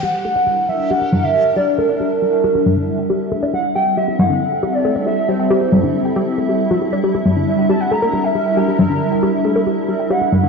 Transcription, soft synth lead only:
\new Staff \with { instrumentName = "Soft synth lead" } { \time 4/4 \key g \minor \tempo 4 = 137 fis''4. e''8 fis''8. e''8. d''8 | bes'2.~ bes'8 r8 | fis''8 g''8 e''8 fis''4~ fis''16 d''8. e''8 | c''4. r2 r8 |
r4. a''16 fis''16 bes''8. e''8. bes''8~ | bes''4. r4 bes'8 fis''4 | }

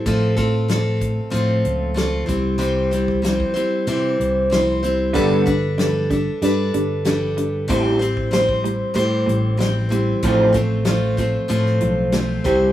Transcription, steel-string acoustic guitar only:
\new Staff \with { instrumentName = "Steel-string acoustic guitar" } { \time 4/4 \key f \lydian \tempo 4 = 94 <a, f a c' f' a'>8 <a c' f' a'>8 <a c' f' a'>4 <a, f a c' f' a'>4 <a c' f' a'>8 <g c' e' c''>8 | <c e g c' e' c''>8 <g c' e' c''>8 <g c' e' c''>8 <g c' e' c''>8 <c e g c' e' c''>4 <g c' e' c''>8 <g c' e' c''>8 | <g d' a' b'>8 <d' a' b'>8 <g d' a' b'>8 <d' a' b'>8 <g d' a' b'>4 <g d' a' b'>4 | <a, e g c' e' c''>8 <g c' e' c''>8 <g c' e' c''>4 <a, e g c' e' c''>4 <g c' e' c''>8 <g c' e' c''>8 |
<a, f a c' f' c''>8 <a c' f' c''>8 <a c' f' c''>8 <a c' f' c''>8 <a, f a c' f' c''>4 <a c' f' c''>8 <g c' e' c''>8 | }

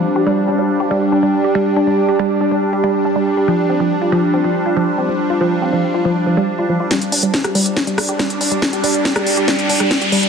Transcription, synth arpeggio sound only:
\new Staff \with { instrumentName = "Synth arpeggio sound" } { \clef bass \time 4/4 \key f \dorian \tempo 4 = 140 r16 g'16 g16 r16 d'16 g16 r16 g'16 g16 r16 d'16 g16 r16 g'16 g16 r16 | d'16 g16 r16 g'16 g16 r16 d'16 g16 r16 g'16 g16 r16 d'16 g16 r16 g'16 | f16 r16 c'16 f16 r16 f'16 f16 r16 c'16 f16 r16 f'16 f16 r16 c'16 f16 | r16 f'16 f16 r16 c'16 f16 r16 f'16 f16 r16 f16 g16 r16 f'16 f16 f'16 |
g16 r16 d'16 g16 r16 g'16 g16 r16 d'16 g16 r16 g'16 g16 r16 d'16 g16 | r16 g'16 g16 r16 d'16 g16 r16 g'16 g16 r16 d'16 g16 r16 g'16 g16 r16 | }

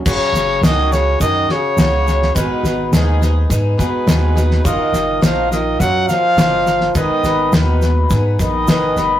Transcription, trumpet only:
\new Staff \with { instrumentName = "Trumpet" } { \time 4/4 \key fis \major \tempo 4 = 104 cis''4 dis''8 cis''8 dis''8 cis''4. | b'4 gis'4 r8 b'4. | dis''4 eis''8 dis''8 fis''8 eis''4. | dis''4 b'4 r8 dis''4. | }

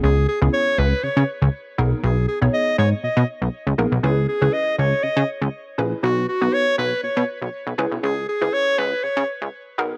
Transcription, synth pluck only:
\new Staff \with { instrumentName = "Synth pluck" } { \time 4/4 \key cis \dorian \tempo 4 = 120 <b cis' e' gis'>8 r16 <b cis' e' gis'>4~ <b cis' e' gis'>16 r4. <b dis' gis' ais'>8~ | <b dis' gis' ais'>8 r16 <b dis' gis' cis''>4~ <b dis' gis' cis''>16 r4. <b dis' gis' ais'>16 r16 | <cis' e' gis' b'>8 r16 <cis' e' gis' b'>4~ <cis' e' gis' b'>16 r4. <cis' e' gis' b'>16 r16 | <b dis' fis' b'>8 r16 <b dis' fis' b'>4~ <b dis' fis' b'>16 r4. <cis' e' gis' b'>8~ |
<cis' e' gis' b'>8 r16 <cis' e' gis' b'>4~ <cis' e' gis' b'>16 r4. <b dis' gis' ais'>8 | }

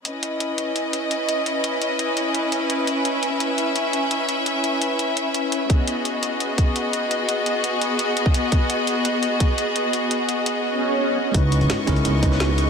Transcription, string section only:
\new Staff \with { instrumentName = "String section" } { \time 4/4 \key cis \minor \tempo 4 = 170 << { dis''1~ | dis''1 | e''1~ | e''1 |
dis''1~ | dis''1~ | dis''1~ | dis''1 |
cis'''1 | } \\ { <cis' e' b'>1~ | <cis' e' b'>1~ | <cis' e' b'>1~ | <cis' e' b'>1 |
<b fis' gis'>1~ | <b fis' gis'>1~ | <b fis' gis'>1~ | <b fis' gis'>1 |
<b dis''>1 | } >> }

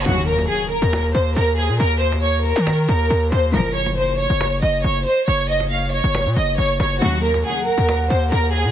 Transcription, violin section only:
\new Staff \with { instrumentName = "Violin section" } { \time 4/4 \key ees \dorian \tempo 4 = 138 ges'8 bes'8 aes'8 bes'4 c''8 bes'8 aes'8 | bes'8 c''8 des''8 bes'4 bes'4 c''8 | bes'8 des''8 c''8 des''4 ees''8 des''8 c''8 | des''8 ees''8 f''8 des''4 ees''8 des''8 des''8 |
ges'8 bes'8 aes'8 bes'4 c''8 bes'8 aes'8 | }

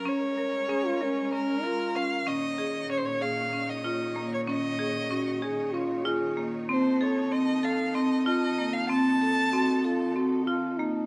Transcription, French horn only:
\new Staff \with { instrumentName = "French horn" } { \time 7/8 \key des \major \tempo 4 = 95 r4 aes'16 f'16 des'4 f'4 | r2. r8 | r4 ges'8 aes'8 f'8 aes'8. r16 | r2. r8 |
r4 ges'8 f'8 ges'8 f'8 ees'8 | }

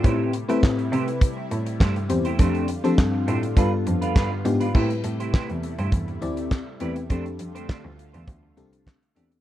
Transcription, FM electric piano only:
\new Staff \with { instrumentName = "FM electric piano" } { \time 4/4 \key a \minor \tempo 4 = 102 << { <f' d''>16 r2. r8. | r1 | r1 | r1 | } \\ { <c' e' g' b'>8 r16 <c' e' g' b'>4~ <c' e' g' b'>16 r4. <c' e' g' c''>16 r16 | <c' d' g' a'>8 r16 <c' d' g' a'>4~ <c' d' g' a'>16 <b d' f' a'>4~ <b d' f' a'>16 r16 <b d' f' g'>16 r16 | <c' e' g' b'>4~ <c' e' g' b'>16 r4 r16 <c' e' g' d''>8. r16 <c' e' g' b'>16 r16 | <c' d' g' a'>4~ <c' d' g' a'>16 r4 r16 <c' d' g' a'>8. r16 <c' d' g' a'>16 r16 | } >> }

